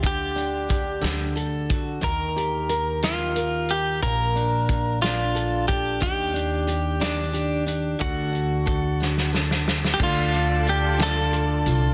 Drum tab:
CC |------------|------------|------------|------------|
HH |x-x-x-x-x-x-|x-x-x-x-x-x-|x-x-x-x-x-x-|x-x-x-x-x-x-|
SD |------o-----|------o-----|------o-----|------o-----|
BD |o---o-----o-|o-----------|o---o-----o-|o-----------|

CC |------------|x-----------|
HH |x-x-x-------|--x-x-x-x-x-|
SD |------oooooo|------o-----|
BD |o---o-------|o-----------|